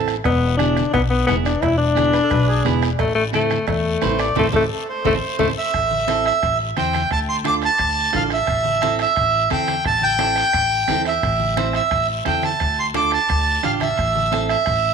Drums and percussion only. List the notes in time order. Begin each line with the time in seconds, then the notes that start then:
0.08 bombo rim, short guiro
0.24 bombo low, bombo rim, cowbell, low conga, long guiro
0.59 bombo rim, high conga, short guiro
0.76 bombo rim, high conga, short guiro
0.93 bombo low, bombo rim, cowbell, low conga, long guiro
1.27 bombo rim, high conga, low conga, low timbale, short guiro
1.45 bombo rim, short guiro
1.62 bombo low, bombo rim, cowbell, low conga, long guiro
1.96 bombo rim, high conga, short guiro
2.13 bombo rim, short guiro
2.30 bombo low, bombo rim, cowbell, low conga, long guiro
2.65 bombo rim, high conga, low conga, short guiro
2.82 bombo rim, short guiro
2.99 bombo low, bombo rim, cowbell, long guiro
3.33 bombo rim, high conga, short guiro
3.50 bombo rim, high conga, short guiro
3.67 bombo low, bombo rim, cowbell, low conga, long guiro
4.02 bombo rim, high conga, low timbale, short guiro
4.19 bombo rim, short guiro
4.35 bombo low, high conga, high timbale, long guiro
4.53 bombo low, high conga, high timbale, long guiro
5.05 bombo low, high conga, high timbale, long guiro
5.39 bombo low, high conga, high timbale, long guiro
5.74 bombo low, bombo rim, high conga, high timbale
5.91 high conga
6.08 bombo rim, high conga, high timbale, short guiro
6.25 bombo rim, high timbale, short guiro
6.43 bombo low, bombo rim, high timbale, long guiro
6.60 high conga
6.77 bombo rim, high conga, high timbale, short guiro
6.93 bombo rim, high conga, high timbale, short guiro
7.11 bombo low, bombo rim, high conga, high timbale, long guiro
7.44 bombo rim, high conga, high timbale, short guiro
7.62 bombo rim, high timbale, short guiro
7.78 bombo low, bombo rim, high timbale, long guiro
7.97 high conga
8.13 bombo rim, high conga, high timbale, low timbale, short guiro
8.30 bombo rim, high timbale, short guiro
8.47 bombo low, bombo rim, high conga, high timbale, long guiro
8.65 high conga
8.81 bombo rim, high conga, high timbale, short guiro
8.99 bombo rim, high timbale, short guiro
9.16 bombo low, bombo rim, high timbale, long guiro
9.33 high conga
9.50 bombo rim, high conga, high timbale, short guiro
9.67 bombo rim, high conga, high timbale, short guiro
9.84 bombo low, bombo rim, high conga, high timbale, long guiro
10.01 high conga
10.19 bombo rim, high conga, high timbale, short guiro
10.36 bombo rim, high timbale, short guiro
10.53 bombo low, bombo rim, high timbale, long guiro
10.71 high conga
10.88 bombo rim, high conga, high timbale, low timbale, short guiro
11.05 bombo rim, high timbale, short guiro
11.23 bombo low, bombo rim, high timbale, long guiro
11.40 high conga
11.57 bombo rim, high conga, high timbale, short guiro
11.73 bombo rim, high timbale, short guiro
11.91 bombo low, bombo rim, high timbale, long guiro
12.10 high conga
12.25 bombo rim, high conga, high timbale, short guiro
12.43 bombo rim, high conga, high timbale, short guiro
12.60 bombo low, bombo rim, high conga, high timbale, long guiro
12.94 bombo rim, high conga, high timbale, short guiro
13.11 bombo rim, high timbale, short guiro
13.29 bombo low, bombo rim, high timbale, long guiro
13.47 high conga
13.63 bombo rim, high conga, high timbale, short guiro
13.80 bombo rim, high conga, high timbale, short guiro
13.97 bombo low, bombo rim, high conga, high timbale, long guiro
14.15 high conga
14.32 bombo rim, high conga, high timbale, short guiro
14.49 bombo rim, high timbale, short guiro
14.66 bombo low, bombo rim, high timbale, long guiro
14.84 high conga